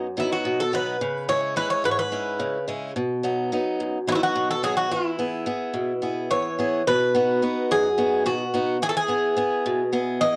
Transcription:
Already playing: F#2
0.17 F#3 B3 D#4 E4
0.33 F#4
0.45 B2
0.60 A4
0.73 F#3 B3 D#4 B4
1.01 C#3
1.29 G#3 C#4 E4 C#5
1.56 G#3 C#4 E4 B4
1.70 C#5
1.84 G#2 B4
1.91 C#5
1.99 B4
2.12 G#3 C#4 E4
2.40 C#3
2.68 G#3 C#4 E4
2.96 B2
3.23 F#3 B3 D#4
3.52 F#3 B3 D#4
3.80 F#2
4.07 F#3 B3 D#4 E4
4.12 E4 F#4
4.23 F#4
4.35 B2
4.51 A4
4.63 F#3 B3 D#4 G#4
4.77 F#4
4.91 E3 E4
5.19 B3 E4 G#4
5.46 B3 E4 G#4
5.74 B2
6.02 B3 E4 G#4
6.31 E3 C#5
6.59 B3 E4 G#4
6.87 B2 B4
7.15 B3 D#4 F#4
7.42 B3 D#4 F#4
7.71 F#2 G#4
7.98 B3 D#4 F#4
8.26 B2 F#4
8.54 B3 D#4 F#4
8.82 E3 G#4
8.89 A4
8.97 G#4
9.08 B3 E4 G#4
9.37 B3 E4 G#4
9.66 B2
9.93 B3 E4 G#4
10.21 E3 D#5

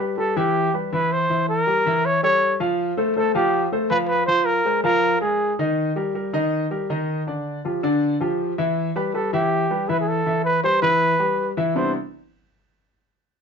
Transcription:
0.00 G3 G4 B4
0.18 G3 G4 A4 B4
0.36 E3 E4 G4 E5
0.74 G3 G4 B4
0.93 E3 E4 B4 E5
1.12 C5
1.30 E3 E4 E5
1.49 A#4
1.67 G3 G4 A#4
1.86 E3 E4 E5
2.06 C#5
2.23 G3 G4 A4 C#5
2.60 F3 F4 F5
2.97 A3 A4 C5
3.16 A3 A4 C5
3.35 F3 F4 G4 F5
3.72 A3 A4 C5
3.90 F3 F4 B4 F5
4.08 B4
4.26 F3 F4 C5 F5
4.45 A#4
4.65 G#3 G#4 C5
4.84 F3 F4 A#4 F5
5.21 G#3 G#4 A#4
5.59 D#3 D#4 D#5
5.96 G3 G4 A#4
6.15 G3 G4 A#4
6.33 D#3 D#4 D#5
6.71 G3 G4 A#4
6.90 D#3 D#4 D#5
7.27 D3 D4 D5
7.65 F3 F4 G4
7.83 D3 D4 D5
8.20 F3 F4 G4
8.58 E3 E4 E5
8.96 G3 G4 B4
9.14 G3 G4 A4 B4
9.33 E3 E4 G4 E5
9.70 G3 G4 B4
9.89 E3 E4 B4 E5
10.00 G#4
10.08 A4
10.26 E3 E4 E5
10.45 B4
10.63 G3 G4 B4 C5
10.82 E3 E4 B4 E5
11.20 G3 G4 B4
11.57 E3 E4 E5
11.75 C3 G3 B3 C4 D4 E4 C5

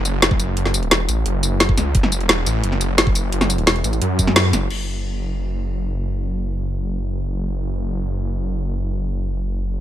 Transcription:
Already playing: F#1
0.05 closed hi-hat, tambourine
0.22 F#1, snare, closed hi-hat
0.31 kick
0.40 closed hi-hat, tambourine
0.57 F#1, closed hi-hat
0.66 snare
0.74 closed hi-hat, tambourine
0.83 closed hi-hat
0.91 E1, snare, closed hi-hat
1.08 A1, closed hi-hat, tambourine
1.26 F#1, closed hi-hat
1.43 closed hi-hat, tambourine
1.60 snare, closed hi-hat
1.69 kick
1.77 C#2, snare, closed hi-hat, tambourine
1.95 F#1, kick, closed hi-hat
2.03 snare
2.12 closed hi-hat, tambourine
2.21 closed hi-hat
2.29 E1, snare, closed hi-hat
2.46 A1, closed hi-hat, tambourine
2.64 F#1, closed hi-hat
2.72 snare
2.81 closed hi-hat, tambourine
2.98 F#1, snare, closed hi-hat
3.07 kick
3.15 closed hi-hat, tambourine
3.32 F#1, closed hi-hat
3.41 snare, tambourine
3.50 closed hi-hat, tambourine
3.58 closed hi-hat
3.67 E1, snare, closed hi-hat
3.76 closed hi-hat
3.84 A1, closed hi-hat, tambourine
3.93 closed hi-hat, tambourine
4.02 F#2, closed hi-hat
4.19 kick, closed hi-hat, tambourine
4.27 snare
4.36 snare, closed hi-hat
4.53 F#1, snare, closed hi-hat, tambourine
4.70 F#1, crash

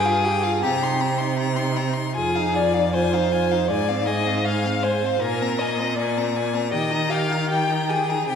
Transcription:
Already playing: G2 G#4
0.05 F4 F5
0.24 G4 G5
0.43 F4 F5
0.63 C3 C4 G4 A#5
0.82 D#4 C6
1.01 C4 A#5
1.19 D#4 C6
1.39 C4 A#5
1.56 D#4 C6
1.77 C4 A#5
1.94 D#4 C6
2.15 F2 F4 G#4 G#5
2.35 D#4 F5
2.54 F4 D5 G#5
2.74 D#4 F5
2.93 F4 C5 G#5
3.13 D#4 F5
3.32 F4 G#5
3.52 D#4 F5
3.68 G#2 G#3 D5 G#5
3.88 C4 F5
4.07 G#3 D#5 G#5
4.26 C4 F5
4.45 G#3 F5 G#5
4.66 C4 F5
4.83 G#3 C5 G#5
5.02 C4 F5
5.21 A#2 A#3 A#4 G#5
5.42 C4 A#5
5.59 A#3 D#5 G#5
5.79 C4 A#5
5.96 A#3 D5 G#5
6.17 C4 A#5
6.36 A#3 G#5
6.54 C4 A#5
6.71 D#3 G4 D#5 G5
6.91 D#4 A#5
7.09 G4 F5 G5
7.29 D#4 A#5
7.49 G4 G5
7.68 D#4 A#5
7.89 G4 G#4 G5
8.10 D#4 A#5
8.28 C3 C4 G4 G5

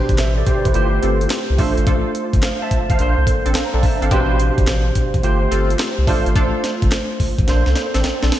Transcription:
Already playing: B2 D4 G4 C5
0.09 G1, kick, closed hi-hat
0.18 A1 B4 E5, snare, clap, closed hi-hat
0.37 A4 D5
0.46 G4 C5, kick, closed hi-hat
0.65 A1 E4 B4, kick, closed hi-hat
0.74 G1 A3 F4 G4 C5, closed hi-hat
1.02 G1 C4 F4 A4, closed hi-hat
1.21 closed hi-hat
1.30 snare, clap, closed hi-hat
1.50 C2
1.58 A1 A3 D4 F4 A4 C5, kick, open hi-hat
1.77 G#1, closed hi-hat
1.87 A1 D4 F4 A4, kick, closed hi-hat
2.15 closed hi-hat
2.33 G1, kick, closed hi-hat
2.42 C5 F5, snare, clap, closed hi-hat
2.62 E5 A5
2.71 A1, kick, closed hi-hat
2.90 A1 C5 F5, kick, closed hi-hat
2.99 A#1 A#3 D4 A4 C5, closed hi-hat
3.18 C2
3.27 kick, closed hi-hat
3.46 A1 C4 D4 A4, closed hi-hat
3.55 A#1 F5 A#5, snare, clap, closed hi-hat
3.73 A#1 C4 D4 A4
3.83 E5 A5, kick, open hi-hat
4.02 G#1 C4 D4 A4 C5 F5, closed hi-hat
4.11 A1 B2 C4 D4 G4 B4 C5, kick, closed hi-hat
4.40 closed hi-hat
4.58 G1, kick, closed hi-hat
4.67 A1, snare, clap, closed hi-hat
4.95 kick, closed hi-hat
5.14 A1, kick, closed hi-hat
5.23 G1 A3 F4 G4 C5, closed hi-hat
5.51 G1 C4 F4 A4, closed hi-hat
5.70 closed hi-hat
5.79 snare, clap, closed hi-hat
5.98 C2
6.07 A1 A3 D4 F4 A4 C5, kick, open hi-hat
6.26 G#1, closed hi-hat
6.35 A1 D4 F4 A4, kick, closed hi-hat
6.64 snare, closed hi-hat
6.82 G1, kick, closed hi-hat
6.92 snare, clap, closed hi-hat
7.20 A1, kick, open hi-hat
7.39 A1, kick, closed hi-hat
7.47 A#1 A#3 D4 A4 C5, snare, closed hi-hat
7.66 C2, snare
7.76 snare, closed hi-hat
7.94 A1 C4 D4 A4, snare, closed hi-hat
8.04 A#1, snare, closed hi-hat
8.23 A#1 C4 D4 A4, snare
8.32 snare, open hi-hat

